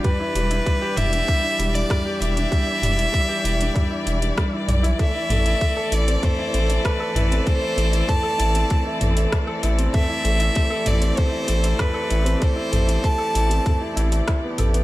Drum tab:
HH |x-xxx-xxx-xxx-xx|x-xxx-xxx-xxx-xx|x-xxx-xxx-xxx-xx|x-xxx-xxx-xxx-xx|
SD |------------r---|------------r---|------------r---|------------r---|
T2 |o-----o-----o---|--o-----o-----o-|--o-----o-----o-|----o-----o-----|
BD |o---o---o---o---|o---o---o---o---|o---o---o---o---|o---o---o---o---|

HH |x-xxx-xxx-xxx-xx|x-xxx-xxx-xxx-xx|
SD |------------r---|------------r---|
T2 |o-----o-----o---|--o-----o-----o-|
BD |o---o---o---o---|o---o---o---o---|